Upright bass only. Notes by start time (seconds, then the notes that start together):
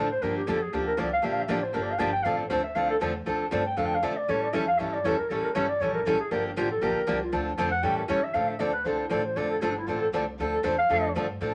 Already playing: A2
0.22 G2
0.48 F2
0.73 D2
0.98 C2
1.24 A#1
1.49 A1
1.75 G1
2.00 G1
2.25 A1
2.50 D2
2.76 C2
3.01 E2
3.27 D2
3.52 G2
3.77 F2
4.03 C3
4.29 A2
4.54 F2
4.80 G2
5.04 E2
5.19 muted upright bass stroke
5.30 A1
5.45 muted upright bass stroke
5.56 G1
5.80 A#1
6.06 A1
6.20 muted upright bass stroke
6.31 G1
6.57 A1
6.82 A#1
6.96 muted upright bass stroke
7.08 C2
7.33 D2
7.58 F2
7.83 A2
8.10 C#3
8.35 A2
8.61 D2
8.85 C2
9.11 A1
9.36 F1
9.62 G1
9.88 A1
10.13 C2
10.39 D2
10.64 E2
10.90 F2
11.15 G2
11.41 A2